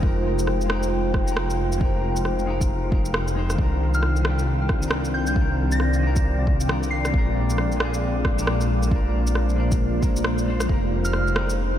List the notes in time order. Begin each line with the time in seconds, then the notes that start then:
Already playing: F1 F4 C5 F5 G5
0.00 G#3 D#4, kick
0.04 G4 A#4
0.39 shaker
0.47 cross-stick
0.61 shaker
0.66 G#3 D#4, cross-stick
0.71 G4 A#4
0.83 shaker
1.11 A#5, kick, cross-stick
1.24 G#3 D#4, shaker
1.29 G4 A#4
1.37 cross-stick
1.50 shaker
1.72 shaker
1.78 G#3 D#4, kick
1.83 G4 A#4
2.16 shaker
2.25 cross-stick
2.39 shaker
2.46 G#3 D#4 G4
2.50 A#4
2.61 kick, shaker
2.91 G#3 D#4 G4, kick
2.95 A#4
3.05 shaker
3.14 cross-stick
3.28 shaker
3.35 G#3 D#4 G4
3.39 C5
3.50 cross-stick, shaker
3.55 C2 D#3 C4 D4, kick
3.63 A#4
3.94 F6, shaker
3.98 D5
4.03 cross-stick
4.16 G5, shaker
4.22 D#3, cross-stick
4.26 D4 G4
4.39 shaker
4.69 kick, cross-stick
4.80 D#3 D4, shaker
4.88 A#4, cross-stick
5.05 shaker
5.14 G6
5.27 G6, shaker
5.33 D#3 D4, kick
5.41 A#4
5.72 A#6, shaker
5.80 cross-stick
5.93 shaker
5.99 D#3
6.03 D4 A#4
6.16 kick, shaker
6.47 kick
6.60 shaker
6.68 D#3 D4 A#4, cross-stick
6.83 shaker
6.91 C7
7.05 cross-stick, shaker
7.10 A#1 G#3 A#3, kick
7.14 D4 A#4
7.37 F4
7.50 shaker
7.58 cross-stick
7.72 shaker
7.76 G#3 C5, cross-stick
7.81 D4
7.85 G#4
7.94 shaker
8.25 kick, cross-stick
8.34 G#3
8.38 D4 A#4, shaker
8.47 cross-stick
8.61 shaker
8.83 shaker
8.88 G#3, kick
8.92 D4 A#4
9.27 shaker
9.35 cross-stick
9.49 shaker
9.56 G#3 D4 A#4
9.71 kick, shaker
10.01 G#3 D4 A#4, kick, shaker
10.16 shaker
10.24 cross-stick
10.38 shaker
10.46 G#3 D4
10.50 C5
10.60 cross-stick, shaker
10.66 F1 G#3 C4 D#4 C5, kick
10.71 G4 A#4
11.05 F6, shaker
11.13 cross-stick
11.27 shaker
11.32 G#3 D#4, cross-stick
11.38 G4 A#4
11.50 G5, shaker